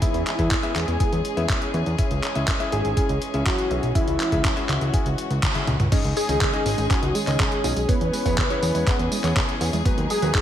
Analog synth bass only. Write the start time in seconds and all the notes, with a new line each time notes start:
0.14 E2
0.39 E2
0.75 E2
0.88 E2
1.13 E2
1.37 E2
1.74 E2
1.86 E2
2.11 C#2
2.36 C#2
2.72 G#1
2.85 G#1
3.09 C#2
3.34 C#2
3.71 B1
3.83 B1
4.08 C#2
4.32 C#2
4.69 C#2
4.81 C#2
5.06 C#2
5.30 C#2
5.67 C#2
5.80 C#2
6.04 C#2
6.29 C#2
6.66 G#1
6.78 G#1
7.02 C#2
7.27 C#2
7.64 B1
7.76 B1
8.01 E2
8.26 E2
8.63 E2
8.75 E2
8.99 E2
9.24 E2
9.61 E2
9.73 E2
9.98 D#2
10.22 D#2